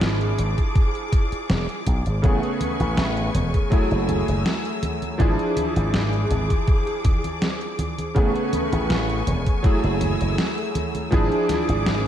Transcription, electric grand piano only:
0, 0, Header, 1, 2, 480
1, 0, Start_track
1, 0, Tempo, 740741
1, 1448, Time_signature, 4, 2, 24, 8
1, 7825, End_track
2, 0, Start_track
2, 0, Title_t, "Electric grand piano"
2, 0, Program_c, 0, 2
2, 0, Control_c, 0, 64, 127
2, 0, Note_on_c, 0, 53, 90
2, 0, Note_on_c, 0, 62, 83
2, 0, Note_on_c, 0, 64, 84
2, 0, Note_on_c, 0, 68, 101
2, 1399, Note_off_c, 0, 53, 0
2, 1402, Note_off_c, 0, 62, 0
2, 1406, Note_off_c, 0, 64, 0
2, 1409, Note_off_c, 0, 68, 0
2, 1438, Note_on_c, 0, 49, 80
2, 1445, Note_on_c, 0, 57, 73
2, 1452, Note_on_c, 0, 59, 73
2, 1456, Control_c, 0, 64, 0
2, 1458, Note_on_c, 0, 68, 90
2, 1577, Control_c, 0, 64, 127
2, 2358, Note_off_c, 0, 49, 0
2, 2361, Note_off_c, 0, 57, 0
2, 2365, Note_off_c, 0, 59, 0
2, 2368, Note_off_c, 0, 68, 0
2, 2398, Note_on_c, 0, 54, 80
2, 2404, Note_on_c, 0, 57, 71
2, 2411, Note_on_c, 0, 64, 72
2, 2415, Control_c, 0, 64, 0
2, 2418, Note_on_c, 0, 68, 85
2, 2516, Control_c, 0, 64, 127
2, 3318, Note_off_c, 0, 54, 0
2, 3321, Note_off_c, 0, 57, 0
2, 3324, Note_off_c, 0, 64, 0
2, 3328, Note_off_c, 0, 68, 0
2, 3356, Note_on_c, 0, 53, 92
2, 3363, Note_on_c, 0, 62, 84
2, 3370, Note_on_c, 0, 64, 83
2, 3375, Note_on_c, 0, 68, 102
2, 3378, Control_c, 0, 64, 0
2, 3498, Control_c, 0, 64, 127
2, 5237, Note_off_c, 0, 53, 0
2, 5240, Note_off_c, 0, 62, 0
2, 5244, Note_off_c, 0, 64, 0
2, 5246, Note_off_c, 0, 68, 0
2, 5277, Note_on_c, 0, 49, 82
2, 5284, Note_on_c, 0, 57, 74
2, 5290, Note_on_c, 0, 59, 74
2, 5297, Control_c, 0, 64, 0
2, 5297, Note_on_c, 0, 68, 89
2, 5423, Control_c, 0, 64, 127
2, 6197, Note_off_c, 0, 49, 0
2, 6201, Note_off_c, 0, 57, 0
2, 6204, Note_off_c, 0, 59, 0
2, 6207, Note_off_c, 0, 68, 0
2, 6237, Note_on_c, 0, 54, 79
2, 6244, Note_on_c, 0, 57, 75
2, 6251, Note_on_c, 0, 64, 73
2, 6256, Control_c, 0, 64, 0
2, 6257, Note_on_c, 0, 68, 90
2, 6370, Control_c, 0, 64, 127
2, 7157, Note_off_c, 0, 54, 0
2, 7161, Note_off_c, 0, 57, 0
2, 7164, Note_off_c, 0, 64, 0
2, 7167, Note_off_c, 0, 68, 0
2, 7196, Note_on_c, 0, 53, 91
2, 7204, Note_on_c, 0, 62, 84
2, 7210, Note_on_c, 0, 64, 88
2, 7217, Control_c, 0, 64, 0
2, 7217, Note_on_c, 0, 68, 105
2, 7320, Control_c, 0, 64, 127
2, 7825, Note_off_c, 0, 53, 0
2, 7825, Note_off_c, 0, 62, 0
2, 7825, Note_off_c, 0, 64, 0
2, 7825, Note_off_c, 0, 68, 0
2, 7825, End_track
0, 0, End_of_file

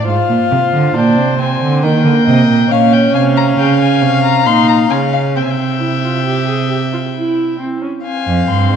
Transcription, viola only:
0, 0, Header, 1, 2, 480
1, 0, Start_track
1, 0, Tempo, 875912
1, 43, Time_signature, 3, 2, 24, 8
1, 2443, Tempo, 895522
1, 4750, End_track
2, 0, Start_track
2, 0, Title_t, "Viola"
2, 0, Program_c, 0, 41
2, 40, Note_on_c, 0, 65, 70
2, 515, Note_on_c, 0, 62, 78
2, 523, Note_off_c, 0, 65, 0
2, 757, Note_off_c, 0, 62, 0
2, 760, Note_on_c, 0, 60, 66
2, 1005, Note_on_c, 0, 58, 82
2, 1013, Note_off_c, 0, 60, 0
2, 1480, Note_on_c, 0, 61, 86
2, 1488, Note_off_c, 0, 58, 0
2, 2442, Note_off_c, 0, 61, 0
2, 2445, Note_on_c, 0, 63, 73
2, 2679, Note_off_c, 0, 63, 0
2, 2682, Note_on_c, 0, 61, 65
2, 2925, Note_on_c, 0, 60, 59
2, 2933, Note_off_c, 0, 61, 0
2, 3159, Note_off_c, 0, 60, 0
2, 3162, Note_on_c, 0, 64, 54
2, 3205, Note_off_c, 0, 64, 0
2, 3287, Note_on_c, 0, 65, 59
2, 3401, Note_off_c, 0, 65, 0
2, 3404, Note_on_c, 0, 67, 65
2, 3524, Note_off_c, 0, 67, 0
2, 3528, Note_on_c, 0, 68, 54
2, 3645, Note_off_c, 0, 68, 0
2, 3649, Note_on_c, 0, 67, 53
2, 3691, Note_off_c, 0, 67, 0
2, 3769, Note_on_c, 0, 65, 54
2, 3811, Note_off_c, 0, 65, 0
2, 3893, Note_on_c, 0, 64, 61
2, 4123, Note_off_c, 0, 64, 0
2, 4126, Note_on_c, 0, 60, 55
2, 4245, Note_off_c, 0, 60, 0
2, 4250, Note_on_c, 0, 61, 54
2, 4293, Note_off_c, 0, 61, 0
2, 4367, Note_on_c, 0, 60, 78
2, 4750, Note_off_c, 0, 60, 0
2, 4750, End_track
0, 0, End_of_file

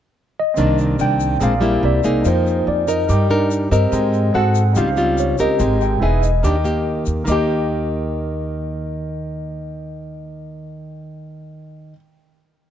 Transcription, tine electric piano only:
0, 0, Header, 1, 2, 480
1, 0, Start_track
1, 0, Key_signature, -3, "major"
1, 0, Tempo, 417537
1, 663, Time_signature, 4, 2, 24, 8
1, 14603, End_track
2, 0, Start_track
2, 0, Title_t, "Tine electric piano"
2, 0, Program_c, 0, 4
2, 455, Note_on_c, 0, 75, 87
2, 887, Note_off_c, 0, 75, 0
2, 1165, Note_on_c, 0, 79, 104
2, 1646, Note_on_c, 0, 77, 93
2, 1649, Note_off_c, 0, 79, 0
2, 2083, Note_off_c, 0, 77, 0
2, 2127, Note_on_c, 0, 74, 71
2, 2606, Note_on_c, 0, 72, 83
2, 2611, Note_off_c, 0, 74, 0
2, 3044, Note_off_c, 0, 72, 0
2, 3083, Note_on_c, 0, 74, 86
2, 3322, Note_off_c, 0, 74, 0
2, 3326, Note_on_c, 0, 75, 80
2, 3992, Note_off_c, 0, 75, 0
2, 4277, Note_on_c, 0, 75, 85
2, 5001, Note_on_c, 0, 78, 93
2, 5016, Note_off_c, 0, 75, 0
2, 5485, Note_on_c, 0, 77, 87
2, 5491, Note_off_c, 0, 78, 0
2, 5973, Note_off_c, 0, 77, 0
2, 5978, Note_on_c, 0, 73, 71
2, 6189, Note_off_c, 0, 73, 0
2, 6220, Note_on_c, 0, 75, 75
2, 6692, Note_on_c, 0, 79, 81
2, 6701, Note_off_c, 0, 75, 0
2, 6929, Note_on_c, 0, 76, 80
2, 6930, Note_off_c, 0, 79, 0
2, 7163, Note_on_c, 0, 75, 71
2, 7168, Note_off_c, 0, 76, 0
2, 8072, Note_off_c, 0, 75, 0
2, 8387, Note_on_c, 0, 75, 69
2, 13721, Note_off_c, 0, 75, 0
2, 14603, End_track
0, 0, End_of_file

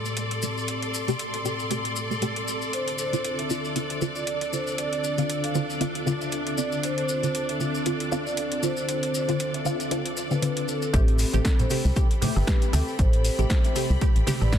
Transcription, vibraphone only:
0, 0, Header, 1, 2, 480
1, 0, Start_track
1, 0, Key_signature, 0, "minor"
1, 0, Tempo, 512821
1, 638, Time_signature, 4, 2, 24, 8
1, 13651, End_track
2, 0, Start_track
2, 0, Title_t, "Vibraphone"
2, 0, Program_c, 0, 11
2, 2559, Note_on_c, 0, 72, 90
2, 2761, Note_off_c, 0, 72, 0
2, 2799, Note_on_c, 0, 72, 94
2, 3102, Note_off_c, 0, 72, 0
2, 3174, Note_on_c, 0, 76, 91
2, 3463, Note_off_c, 0, 76, 0
2, 3892, Note_on_c, 0, 74, 88
2, 4182, Note_off_c, 0, 74, 0
2, 4239, Note_on_c, 0, 72, 81
2, 4441, Note_off_c, 0, 72, 0
2, 4478, Note_on_c, 0, 74, 90
2, 4680, Note_off_c, 0, 74, 0
2, 4716, Note_on_c, 0, 74, 86
2, 5020, Note_off_c, 0, 74, 0
2, 5090, Note_on_c, 0, 77, 89
2, 5381, Note_off_c, 0, 77, 0
2, 5811, Note_on_c, 0, 76, 85
2, 6102, Note_off_c, 0, 76, 0
2, 6157, Note_on_c, 0, 74, 84
2, 6360, Note_off_c, 0, 74, 0
2, 6398, Note_on_c, 0, 72, 99
2, 6600, Note_off_c, 0, 72, 0
2, 6637, Note_on_c, 0, 72, 97
2, 6941, Note_off_c, 0, 72, 0
2, 7012, Note_on_c, 0, 76, 83
2, 7302, Note_off_c, 0, 76, 0
2, 7730, Note_on_c, 0, 74, 88
2, 8021, Note_off_c, 0, 74, 0
2, 8077, Note_on_c, 0, 72, 82
2, 8280, Note_off_c, 0, 72, 0
2, 8315, Note_on_c, 0, 72, 92
2, 8519, Note_off_c, 0, 72, 0
2, 8557, Note_on_c, 0, 72, 90
2, 8860, Note_off_c, 0, 72, 0
2, 8932, Note_on_c, 0, 76, 87
2, 9222, Note_off_c, 0, 76, 0
2, 9652, Note_on_c, 0, 71, 88
2, 9942, Note_off_c, 0, 71, 0
2, 9998, Note_on_c, 0, 69, 82
2, 10200, Note_off_c, 0, 69, 0
2, 10237, Note_on_c, 0, 69, 101
2, 10238, Note_on_c, 0, 60, 78
2, 10440, Note_off_c, 0, 69, 0
2, 10441, Note_off_c, 0, 60, 0
2, 10476, Note_on_c, 0, 60, 81
2, 10476, Note_on_c, 0, 69, 99
2, 10780, Note_off_c, 0, 60, 0
2, 10780, Note_off_c, 0, 69, 0
2, 10851, Note_on_c, 0, 69, 76
2, 10851, Note_on_c, 0, 72, 93
2, 11141, Note_off_c, 0, 69, 0
2, 11142, Note_off_c, 0, 72, 0
2, 11570, Note_on_c, 0, 71, 88
2, 11571, Note_on_c, 0, 67, 73
2, 11861, Note_off_c, 0, 67, 0
2, 11861, Note_off_c, 0, 71, 0
2, 11917, Note_on_c, 0, 60, 75
2, 11917, Note_on_c, 0, 69, 86
2, 12120, Note_off_c, 0, 60, 0
2, 12120, Note_off_c, 0, 69, 0
2, 12157, Note_on_c, 0, 72, 102
2, 12158, Note_on_c, 0, 69, 76
2, 12360, Note_off_c, 0, 69, 0
2, 12360, Note_off_c, 0, 72, 0
2, 12397, Note_on_c, 0, 69, 78
2, 12397, Note_on_c, 0, 72, 101
2, 12701, Note_off_c, 0, 69, 0
2, 12701, Note_off_c, 0, 72, 0
2, 12773, Note_on_c, 0, 76, 91
2, 12774, Note_on_c, 0, 72, 78
2, 13063, Note_off_c, 0, 72, 0
2, 13063, Note_off_c, 0, 76, 0
2, 13493, Note_on_c, 0, 71, 72
2, 13493, Note_on_c, 0, 74, 91
2, 13651, Note_off_c, 0, 71, 0
2, 13651, Note_off_c, 0, 74, 0
2, 13651, End_track
0, 0, End_of_file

